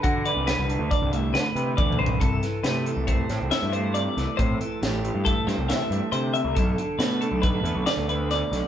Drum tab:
HH |x--x--x--x--x--x--x--x--------|x--x--x--x--x--x--x--x--x--x--|x--x--x--x--x--x--x--x--x--x--|x--x--x--x--x--x--x--x--x--x--|
SD |------o-----------o-----------|---o--o--------o--o--------o--|------o--------o--o-----------|------o-----------o-----o--o--|
T1 |------------------------o-----|------------------------------|------------------------------|------------------------------|
T2 |--------------------------o---|------------------------------|------------------------------|------------------------------|
FT |----------------------------o-|------------------------------|------------------------------|------------------------------|
BD |o-----------o-----------o-----|o-----------o-----------------|o-----------o-----------------|o-----------o-----------------|